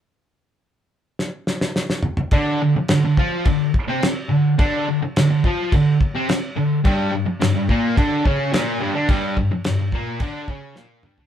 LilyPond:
<<
  \new Staff \with { instrumentName = "Distorted electric guitar" } { \clef bass \time 4/4 \key d \minor \tempo 4 = 106 r1 | <d d'>8 d16 r16 d16 d16 <f f'>8 d8 r16 <c c'>16 r8 d8 | <d d'>8 d16 r16 d16 d16 <f f'>8 d8 r16 <c c'>16 r8 d8 | <g, g>8 g,16 r16 g,16 g,16 <bes, bes>8 <d d'>8 <cis cis'>8 <bes, bes>8 <g, g>16 <d d'>16 |
<g, g>8 g,16 r16 g,16 g,16 <bes, bes>8 <d d'>8 <cis cis'>8 <bes, bes>8 <g, g>16 <d d'>16 | }
  \new DrumStaff \with { instrumentName = "Drums" } \drummode { \time 4/4 r4 r4 sn8 sn16 sn16 sn16 sn16 toml16 toml16 | <cymc bd>4 <cymc sn>8 bd8 <cymc bd>8 bd8 <cymc sn>4 | <cymc bd>4 <cymc sn>8 bd8 <cymc bd>8 bd8 <cymc sn>4 | <cymc bd>4 <cymc sn>8 bd8 <cymc bd>8 bd8 <cymc sn>4 |
<cymc bd>8 bd8 <cymc sn>8 bd8 <cymc bd>8 bd8 sn8 toml16 tomfh16 | }
>>